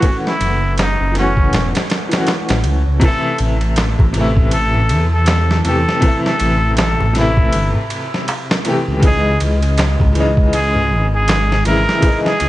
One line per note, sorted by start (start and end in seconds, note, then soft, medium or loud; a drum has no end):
0.00 1.12 E3 medium
0.00 0.03 A3 medium
0.00 1.12 A3 medium
0.00 0.05 C#4 medium
0.00 3.03 C#4 medium
0.00 0.08 F#4 loud
0.00 0.19 F#4 medium
0.00 kick loud
0.00 ride medium
0.05 1.13 C#4 medium
0.05 1.14 F#4 loud
0.27 0.74 E4 medium
0.27 snare medium
0.40 0.96 F#1 medium
0.40 ride medium
0.78 1.14 D#4 medium
0.78 snare loud
0.78 ride medium
0.78 darbuka tek medium
1.00 1.50 F#1 loud
1.12 2.05 E3 medium
1.12 2.06 A3 medium
1.12 ride medium
1.16 2.08 C#4 medium
1.16 1.70 C#4 medium
1.16 2.09 F#4 loud
1.16 snare soft
1.37 kick medium
1.52 1.72 E1 medium
1.52 snare loud
1.52 ride medium
1.52 darbuka dum medium
1.75 snare medium
1.75 ride medium
1.90 snare loud
1.90 ride medium
2.09 2.97 E3 medium
2.09 2.99 A3 medium
2.09 ride medium
2.13 3.00 C#4 medium
2.13 3.01 F#4 loud
2.13 snare loud
2.27 snare medium
2.27 ride medium
2.27 darbuka tek medium
2.49 2.63 A1 medium
2.49 snare loud
2.49 ride medium
2.64 2.84 C#2 medium
2.64 ride medium
2.87 3.01 C#2 medium
3.00 4.10 C3 loud
3.00 4.11 E3 medium
3.00 kick loud
3.00 ride medium
3.04 4.13 A3 medium
3.04 4.14 E4 loud
3.04 3.38 A4 loud
3.38 3.95 A1 medium
3.38 ride medium
3.61 ride soft
3.76 snare loud
3.76 ride medium
3.76 darbuka tek medium
3.99 4.91 A1 loud
3.99 kick medium
3.99 darbuka dum medium
4.13 5.06 C3 loud
4.13 5.07 E3 medium
4.13 ride medium
4.18 5.08 A3 medium
4.18 5.10 E4 loud
4.37 kick medium
4.51 5.06 A4 loud
4.51 ride medium
4.74 darbuka dum medium
4.89 5.62 E2 loud
4.89 ride medium
5.13 5.61 A4 medium
5.26 snare loud
5.26 ride medium
5.26 darbuka tek medium
5.51 snare medium
5.65 5.85 E2 medium
5.65 5.99 C3 medium
5.65 5.99 E3 medium
5.65 6.00 A3 medium
5.65 6.01 G4 loud
5.65 6.19 A4 loud
5.65 ride medium
5.89 snare medium
6.01 7.10 C3 loud
6.01 7.11 E3 medium
6.01 kick loud
6.01 ride medium
6.06 7.13 A3 medium
6.06 7.14 E4 loud
6.26 6.74 A4 loud
6.26 snare medium
6.40 6.96 A1 loud
6.40 ride medium
6.77 7.13 A4 medium
6.77 snare loud
6.77 ride medium
6.77 darbuka tek medium
7.00 7.50 A1 loud
7.00 darbuka dum medium
7.13 8.06 C3 loud
7.13 8.07 E3 medium
7.13 snare soft
7.13 ride medium
7.18 8.08 A3 medium
7.18 7.70 E4 medium
7.18 8.10 E4 loud
7.37 kick loud
7.53 7.73 G1 medium
7.53 ride medium
7.75 darbuka dum medium
7.90 ride medium
8.14 snare medium
8.28 ride medium
8.28 darbuka tek medium
8.51 snare loud
8.65 8.99 C3 medium
8.65 8.99 E3 medium
8.65 9.00 A3 medium
8.65 ride medium
8.69 9.01 G4 loud
8.88 9.38 C#2 medium
9.00 10.10 C#3 loud
9.00 10.11 E3 medium
9.00 kick loud
9.00 ride medium
9.05 10.12 G#3 medium
9.05 10.14 D#4 loud
9.05 9.39 G#4 loud
9.40 9.96 C#2 medium
9.40 ride medium
9.62 ride soft
9.78 snare loud
9.78 ride medium
9.78 darbuka tek medium
10.00 10.93 C#2 loud
10.00 kick medium
10.00 darbuka dum medium
10.13 11.06 C#3 loud
10.13 11.07 E3 medium
10.13 ride medium
10.18 11.08 G#3 medium
10.18 11.10 D#4 loud
10.37 kick loud
10.53 11.06 G#4 loud
10.53 ride medium
10.76 darbuka dum medium
10.91 11.63 G#1 loud
11.15 11.62 G#4 loud
11.28 snare loud
11.28 ride medium
11.28 darbuka tek medium
11.52 snare medium
11.65 11.85 G#1 medium
11.65 11.99 C#3 loud
11.65 11.99 E3 medium
11.65 12.00 G#3 medium
11.65 12.00 E4 loud
11.65 12.19 A#4 loud
11.65 ride medium
11.89 snare medium
12.01 12.49 C#3 loud
12.01 12.49 E3 medium
12.01 kick loud
12.01 ride medium
12.06 12.49 G#3 medium
12.06 12.49 D#4 loud
12.26 12.49 G#4 loud
12.26 snare medium
12.40 12.49 C#2 loud
12.40 ride medium